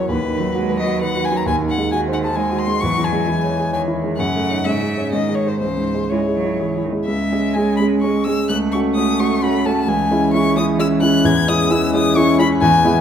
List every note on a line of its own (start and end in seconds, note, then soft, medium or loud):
0.00 0.13 E2 soft
0.00 0.12 E3 soft
0.00 0.12 F#3 soft
0.00 0.12 F#4 soft
0.00 0.12 A#4 soft
0.09 1.42 D#2 soft
0.09 0.18 D#3 medium
0.09 0.77 B4 medium
0.24 0.49 D#3 soft
0.33 0.55 D#3 medium
0.40 0.64 F#3 soft
0.55 0.81 G#3 medium
0.55 0.79 F#4 soft
0.70 0.95 B4 soft
0.79 1.03 F#3 medium
0.79 1.01 D#5 medium
0.85 1.10 F#4 soft
1.01 1.92 D#3 medium
1.01 1.26 B4 soft
1.01 1.26 F#5 medium
1.16 1.41 F#4 soft
1.25 1.38 G#5 medium
1.31 1.47 F#3 soft
1.36 1.47 A#5 medium
1.46 2.78 D#2 medium
1.46 1.55 G#5 medium
1.62 1.86 D#3 soft
1.69 1.91 F#5 medium
1.78 2.01 G#3 soft
1.92 2.38 D#3 medium
1.92 2.16 F#4 soft
1.92 2.00 G#5 medium
2.08 2.32 C5 soft
2.13 2.18 F#5 medium
2.22 2.47 G#4 soft
2.22 2.37 A5 medium
2.35 2.82 G#3 soft
2.35 2.61 C5 soft
2.35 2.60 G#5 medium
2.52 2.76 F#4 soft
2.59 2.82 C6 medium
2.67 2.83 G#3 soft
2.80 4.15 E2 medium
2.80 3.29 F#3 medium
2.80 3.06 C#6 medium
2.97 3.22 E3 soft
3.04 3.73 G#5 medium
3.12 3.37 G#3 soft
3.27 3.72 E3 soft
3.27 3.52 E4 soft
3.43 3.67 C#5 soft
3.58 3.82 G#4 soft
3.73 4.20 D#3 soft
3.73 3.97 C#5 soft
3.73 3.81 G#5 medium
3.88 4.12 E4 soft
4.03 4.19 G#3 soft
4.17 4.64 F#2 soft
4.17 4.66 C#3 soft
4.17 4.66 F#5 medium
4.35 4.60 A3 soft
4.50 4.64 D#4 soft
4.50 4.64 C#5 soft
4.65 5.11 G#2 soft
4.65 5.14 C#3 soft
4.65 5.11 E5 medium
4.82 5.06 G#3 soft
4.98 5.11 C#4 soft
4.98 5.11 C#5 soft
5.12 5.59 G#2 soft
5.12 5.62 D#3 soft
5.12 5.36 D#5 medium
5.28 5.54 G#3 soft
5.35 5.49 C#5 medium
5.45 5.59 D#4 soft
5.45 5.60 C5 soft
5.45 5.59 C5 soft
5.60 7.03 C#2 soft
5.60 6.05 E3 soft
5.60 6.11 C5 medium
5.78 6.04 G#2 soft
5.94 6.20 G#3 soft
6.09 6.18 G#3 medium
6.09 6.37 E4 soft
6.09 6.83 C#5 soft
6.27 6.53 G#4 soft
6.36 6.61 F#3 soft
6.43 6.69 E4 soft
6.59 6.83 E3 soft
6.59 6.85 G#4 soft
6.76 7.01 E4 soft
6.84 6.92 D#3 soft
6.92 7.08 G#3 soft
7.05 7.30 C#2 soft
7.05 8.46 G#3 medium
7.05 7.55 E5 medium
7.32 7.53 G#3 soft
7.32 7.53 C#4 soft
7.32 7.53 G#4 soft
7.54 7.77 G#3 soft
7.54 7.77 C#4 soft
7.54 7.77 G#4 soft
7.54 7.76 G#5 medium
7.77 8.01 G#3 soft
7.77 8.01 C#4 soft
7.77 8.01 G#4 soft
7.77 7.85 B5 medium
8.01 8.24 G#3 soft
8.01 8.25 C#4 soft
8.01 8.25 G#4 soft
8.01 8.26 C#6 medium
8.24 8.47 G#3 soft
8.24 8.48 C#4 soft
8.24 8.48 G#4 soft
8.24 8.48 E6 medium
8.49 8.72 C#2 soft
8.49 9.85 A3 medium
8.49 8.57 F#6 medium
8.72 8.94 A3 soft
8.72 8.95 C#4 soft
8.72 8.95 F#4 soft
8.72 8.80 C#6 medium
8.95 9.17 A3 soft
8.95 9.17 C#4 soft
8.95 9.18 F#4 soft
8.95 9.21 D#6 medium
9.20 9.40 A3 soft
9.20 9.40 C#4 soft
9.20 9.41 F#4 soft
9.20 9.44 C#6 medium
9.42 9.63 A3 soft
9.42 9.63 C#4 soft
9.42 9.63 F#4 soft
9.42 9.67 B5 medium
9.66 9.86 A3 soft
9.66 9.86 C#4 soft
9.66 9.87 F#4 soft
9.66 9.90 A5 medium
9.88 10.10 C#2 medium
9.88 12.58 E3 medium
9.88 10.33 G#5 medium
10.11 10.31 G#3 soft
10.11 10.32 C#4 soft
10.11 10.32 E4 soft
10.33 10.54 G#3 soft
10.33 10.54 C#4 soft
10.33 10.54 E4 medium
10.33 10.56 C#6 medium
10.56 10.77 G#3 soft
10.56 10.77 C#4 soft
10.56 10.78 E4 soft
10.56 10.65 D#6 medium
10.79 11.00 G#3 soft
10.79 11.00 C#4 soft
10.79 11.00 E4 medium
10.79 10.88 E6 medium
11.01 11.23 G#3 soft
11.01 11.23 C#4 soft
11.01 11.23 E4 medium
11.01 11.27 F#6 medium
11.25 11.47 E2 medium
11.25 11.50 G#6 loud
11.48 11.68 G#3 soft
11.48 11.69 C#4 medium
11.48 11.69 E4 medium
11.48 11.73 D#6 medium
11.70 11.91 G#3 medium
11.70 11.91 C#4 medium
11.70 11.91 E4 medium
11.70 11.94 E6 medium
11.94 12.14 G#3 medium
11.94 12.14 C#4 medium
11.94 12.15 E4 medium
11.94 12.18 D#6 medium
12.16 12.37 G#3 medium
12.16 12.37 C#4 medium
12.16 12.37 E4 medium
12.16 12.39 C#6 loud
12.39 12.59 G#3 medium
12.39 12.60 C#4 medium
12.39 12.60 E4 medium
12.39 12.47 B5 loud
12.61 12.84 E2 medium
12.61 12.71 E3 medium
12.61 13.01 G#5 loud
12.85 13.01 E3 medium
12.85 13.01 G#3 medium
12.85 13.01 B3 medium
12.85 13.01 E4 medium